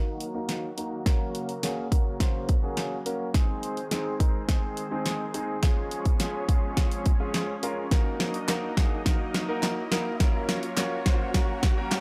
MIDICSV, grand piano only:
0, 0, Header, 1, 2, 480
1, 0, Start_track
1, 0, Tempo, 571429
1, 890, Time_signature, 4, 2, 24, 8
1, 10083, End_track
2, 0, Start_track
2, 0, Title_t, "Grand piano"
2, 0, Program_c, 0, 0
2, 0, Note_on_c, 0, 58, 80
2, 0, Note_on_c, 0, 63, 82
2, 0, Note_on_c, 0, 66, 76
2, 0, Note_on_c, 0, 70, 91
2, 197, Note_off_c, 0, 58, 0
2, 198, Note_off_c, 0, 63, 0
2, 199, Note_off_c, 0, 66, 0
2, 200, Note_off_c, 0, 70, 0
2, 289, Note_on_c, 0, 58, 90
2, 290, Note_on_c, 0, 63, 81
2, 291, Note_on_c, 0, 66, 77
2, 293, Note_on_c, 0, 70, 96
2, 558, Note_off_c, 0, 58, 0
2, 559, Note_off_c, 0, 63, 0
2, 559, Note_off_c, 0, 66, 0
2, 560, Note_off_c, 0, 70, 0
2, 650, Note_on_c, 0, 58, 81
2, 651, Note_on_c, 0, 63, 79
2, 654, Note_on_c, 0, 66, 76
2, 654, Note_on_c, 0, 70, 90
2, 829, Note_off_c, 0, 58, 0
2, 830, Note_off_c, 0, 63, 0
2, 831, Note_off_c, 0, 66, 0
2, 831, Note_off_c, 0, 70, 0
2, 891, Note_on_c, 0, 58, 93
2, 891, Note_on_c, 0, 61, 81
2, 893, Note_on_c, 0, 66, 85
2, 895, Note_on_c, 0, 70, 103
2, 1249, Note_off_c, 0, 58, 0
2, 1249, Note_off_c, 0, 61, 0
2, 1250, Note_off_c, 0, 66, 0
2, 1251, Note_off_c, 0, 70, 0
2, 1370, Note_on_c, 0, 58, 89
2, 1371, Note_on_c, 0, 61, 80
2, 1374, Note_on_c, 0, 66, 79
2, 1374, Note_on_c, 0, 68, 96
2, 1549, Note_off_c, 0, 58, 0
2, 1550, Note_off_c, 0, 61, 0
2, 1551, Note_off_c, 0, 66, 0
2, 1551, Note_off_c, 0, 68, 0
2, 1609, Note_on_c, 0, 58, 85
2, 1611, Note_on_c, 0, 61, 81
2, 1611, Note_on_c, 0, 66, 81
2, 1615, Note_on_c, 0, 70, 96
2, 1789, Note_off_c, 0, 58, 0
2, 1790, Note_off_c, 0, 61, 0
2, 1790, Note_off_c, 0, 66, 0
2, 1792, Note_off_c, 0, 70, 0
2, 1847, Note_on_c, 0, 58, 85
2, 1850, Note_on_c, 0, 61, 79
2, 1850, Note_on_c, 0, 66, 78
2, 1852, Note_on_c, 0, 72, 98
2, 2117, Note_off_c, 0, 58, 0
2, 2119, Note_off_c, 0, 61, 0
2, 2119, Note_off_c, 0, 66, 0
2, 2120, Note_off_c, 0, 72, 0
2, 2207, Note_on_c, 0, 58, 88
2, 2209, Note_on_c, 0, 61, 82
2, 2211, Note_on_c, 0, 66, 79
2, 2212, Note_on_c, 0, 68, 97
2, 2477, Note_off_c, 0, 58, 0
2, 2478, Note_off_c, 0, 61, 0
2, 2479, Note_off_c, 0, 66, 0
2, 2480, Note_off_c, 0, 68, 0
2, 2567, Note_on_c, 0, 58, 87
2, 2568, Note_on_c, 0, 61, 78
2, 2569, Note_on_c, 0, 66, 78
2, 2570, Note_on_c, 0, 70, 94
2, 2748, Note_off_c, 0, 58, 0
2, 2748, Note_off_c, 0, 61, 0
2, 2749, Note_off_c, 0, 66, 0
2, 2749, Note_off_c, 0, 70, 0
2, 2807, Note_on_c, 0, 56, 95
2, 2808, Note_on_c, 0, 60, 86
2, 2809, Note_on_c, 0, 63, 86
2, 2811, Note_on_c, 0, 68, 102
2, 3167, Note_off_c, 0, 56, 0
2, 3167, Note_off_c, 0, 60, 0
2, 3168, Note_off_c, 0, 63, 0
2, 3169, Note_off_c, 0, 68, 0
2, 3287, Note_on_c, 0, 56, 89
2, 3289, Note_on_c, 0, 60, 80
2, 3289, Note_on_c, 0, 63, 81
2, 3290, Note_on_c, 0, 68, 97
2, 3468, Note_off_c, 0, 56, 0
2, 3469, Note_off_c, 0, 60, 0
2, 3469, Note_off_c, 0, 63, 0
2, 3469, Note_off_c, 0, 68, 0
2, 3526, Note_on_c, 0, 56, 87
2, 3527, Note_on_c, 0, 60, 82
2, 3529, Note_on_c, 0, 63, 86
2, 3530, Note_on_c, 0, 70, 98
2, 3707, Note_off_c, 0, 56, 0
2, 3708, Note_off_c, 0, 60, 0
2, 3709, Note_off_c, 0, 63, 0
2, 3709, Note_off_c, 0, 70, 0
2, 3766, Note_on_c, 0, 56, 83
2, 3766, Note_on_c, 0, 60, 77
2, 3769, Note_on_c, 0, 63, 78
2, 3770, Note_on_c, 0, 68, 92
2, 4037, Note_off_c, 0, 56, 0
2, 4037, Note_off_c, 0, 60, 0
2, 4038, Note_off_c, 0, 63, 0
2, 4039, Note_off_c, 0, 68, 0
2, 4125, Note_on_c, 0, 56, 86
2, 4128, Note_on_c, 0, 60, 84
2, 4129, Note_on_c, 0, 63, 80
2, 4131, Note_on_c, 0, 68, 100
2, 4396, Note_off_c, 0, 56, 0
2, 4398, Note_off_c, 0, 60, 0
2, 4398, Note_off_c, 0, 63, 0
2, 4399, Note_off_c, 0, 68, 0
2, 4485, Note_on_c, 0, 56, 84
2, 4486, Note_on_c, 0, 60, 76
2, 4488, Note_on_c, 0, 63, 80
2, 4489, Note_on_c, 0, 68, 94
2, 4667, Note_off_c, 0, 56, 0
2, 4667, Note_off_c, 0, 60, 0
2, 4668, Note_off_c, 0, 63, 0
2, 4669, Note_off_c, 0, 68, 0
2, 4725, Note_on_c, 0, 56, 94
2, 4728, Note_on_c, 0, 61, 82
2, 4729, Note_on_c, 0, 65, 89
2, 4730, Note_on_c, 0, 68, 103
2, 5086, Note_off_c, 0, 56, 0
2, 5087, Note_off_c, 0, 61, 0
2, 5088, Note_off_c, 0, 65, 0
2, 5088, Note_off_c, 0, 68, 0
2, 5205, Note_on_c, 0, 56, 86
2, 5206, Note_on_c, 0, 61, 85
2, 5207, Note_on_c, 0, 65, 80
2, 5209, Note_on_c, 0, 68, 102
2, 5387, Note_off_c, 0, 56, 0
2, 5387, Note_off_c, 0, 61, 0
2, 5388, Note_off_c, 0, 65, 0
2, 5389, Note_off_c, 0, 68, 0
2, 5446, Note_on_c, 0, 56, 95
2, 5447, Note_on_c, 0, 61, 84
2, 5448, Note_on_c, 0, 65, 82
2, 5450, Note_on_c, 0, 68, 101
2, 5627, Note_off_c, 0, 56, 0
2, 5628, Note_off_c, 0, 61, 0
2, 5628, Note_off_c, 0, 65, 0
2, 5629, Note_off_c, 0, 68, 0
2, 5684, Note_on_c, 0, 56, 89
2, 5685, Note_on_c, 0, 61, 81
2, 5687, Note_on_c, 0, 65, 78
2, 5688, Note_on_c, 0, 68, 97
2, 5956, Note_off_c, 0, 56, 0
2, 5956, Note_off_c, 0, 61, 0
2, 5957, Note_off_c, 0, 65, 0
2, 5958, Note_off_c, 0, 68, 0
2, 6047, Note_on_c, 0, 56, 88
2, 6047, Note_on_c, 0, 61, 79
2, 6048, Note_on_c, 0, 65, 81
2, 6050, Note_on_c, 0, 68, 97
2, 6317, Note_off_c, 0, 56, 0
2, 6317, Note_off_c, 0, 61, 0
2, 6318, Note_off_c, 0, 65, 0
2, 6319, Note_off_c, 0, 68, 0
2, 6408, Note_on_c, 0, 56, 84
2, 6408, Note_on_c, 0, 61, 79
2, 6411, Note_on_c, 0, 65, 80
2, 6411, Note_on_c, 0, 70, 93
2, 6588, Note_off_c, 0, 56, 0
2, 6588, Note_off_c, 0, 61, 0
2, 6590, Note_off_c, 0, 65, 0
2, 6590, Note_off_c, 0, 70, 0
2, 6646, Note_on_c, 0, 58, 92
2, 6649, Note_on_c, 0, 63, 86
2, 6649, Note_on_c, 0, 66, 89
2, 6651, Note_on_c, 0, 70, 106
2, 7006, Note_off_c, 0, 58, 0
2, 7008, Note_off_c, 0, 63, 0
2, 7008, Note_off_c, 0, 66, 0
2, 7008, Note_off_c, 0, 70, 0
2, 7128, Note_on_c, 0, 58, 93
2, 7130, Note_on_c, 0, 63, 82
2, 7132, Note_on_c, 0, 66, 86
2, 7133, Note_on_c, 0, 70, 98
2, 7308, Note_off_c, 0, 58, 0
2, 7309, Note_off_c, 0, 63, 0
2, 7310, Note_off_c, 0, 66, 0
2, 7311, Note_off_c, 0, 70, 0
2, 7368, Note_on_c, 0, 58, 90
2, 7369, Note_on_c, 0, 63, 85
2, 7371, Note_on_c, 0, 66, 86
2, 7373, Note_on_c, 0, 68, 96
2, 7548, Note_off_c, 0, 58, 0
2, 7549, Note_off_c, 0, 63, 0
2, 7550, Note_off_c, 0, 66, 0
2, 7551, Note_off_c, 0, 68, 0
2, 7607, Note_on_c, 0, 58, 92
2, 7609, Note_on_c, 0, 63, 80
2, 7609, Note_on_c, 0, 66, 83
2, 7610, Note_on_c, 0, 70, 96
2, 7877, Note_off_c, 0, 58, 0
2, 7878, Note_off_c, 0, 63, 0
2, 7878, Note_off_c, 0, 66, 0
2, 7879, Note_off_c, 0, 70, 0
2, 7966, Note_on_c, 0, 58, 88
2, 7967, Note_on_c, 0, 63, 84
2, 7969, Note_on_c, 0, 66, 82
2, 7971, Note_on_c, 0, 70, 99
2, 8237, Note_off_c, 0, 58, 0
2, 8237, Note_off_c, 0, 63, 0
2, 8238, Note_off_c, 0, 66, 0
2, 8239, Note_off_c, 0, 70, 0
2, 8326, Note_on_c, 0, 58, 88
2, 8329, Note_on_c, 0, 63, 79
2, 8330, Note_on_c, 0, 66, 79
2, 8331, Note_on_c, 0, 70, 99
2, 8508, Note_off_c, 0, 58, 0
2, 8509, Note_off_c, 0, 63, 0
2, 8509, Note_off_c, 0, 66, 0
2, 8510, Note_off_c, 0, 70, 0
2, 8568, Note_on_c, 0, 58, 93
2, 8569, Note_on_c, 0, 61, 87
2, 8571, Note_on_c, 0, 66, 86
2, 8571, Note_on_c, 0, 70, 107
2, 8927, Note_off_c, 0, 58, 0
2, 8928, Note_off_c, 0, 61, 0
2, 8929, Note_off_c, 0, 66, 0
2, 8929, Note_off_c, 0, 70, 0
2, 9048, Note_on_c, 0, 58, 95
2, 9049, Note_on_c, 0, 61, 81
2, 9051, Note_on_c, 0, 66, 82
2, 9053, Note_on_c, 0, 73, 97
2, 9228, Note_off_c, 0, 58, 0
2, 9229, Note_off_c, 0, 61, 0
2, 9230, Note_off_c, 0, 66, 0
2, 9231, Note_off_c, 0, 73, 0
2, 9289, Note_on_c, 0, 58, 96
2, 9290, Note_on_c, 0, 61, 89
2, 9292, Note_on_c, 0, 66, 88
2, 9293, Note_on_c, 0, 72, 102
2, 9469, Note_off_c, 0, 58, 0
2, 9469, Note_off_c, 0, 61, 0
2, 9470, Note_off_c, 0, 66, 0
2, 9470, Note_off_c, 0, 72, 0
2, 9527, Note_on_c, 0, 58, 87
2, 9528, Note_on_c, 0, 61, 84
2, 9530, Note_on_c, 0, 66, 83
2, 9531, Note_on_c, 0, 70, 99
2, 9797, Note_off_c, 0, 58, 0
2, 9798, Note_off_c, 0, 61, 0
2, 9799, Note_off_c, 0, 66, 0
2, 9799, Note_off_c, 0, 70, 0
2, 9887, Note_on_c, 0, 58, 89
2, 9889, Note_on_c, 0, 61, 82
2, 9891, Note_on_c, 0, 66, 83
2, 9891, Note_on_c, 0, 70, 100
2, 10083, Note_off_c, 0, 58, 0
2, 10083, Note_off_c, 0, 61, 0
2, 10083, Note_off_c, 0, 66, 0
2, 10083, Note_off_c, 0, 70, 0
2, 10083, End_track
0, 0, End_of_file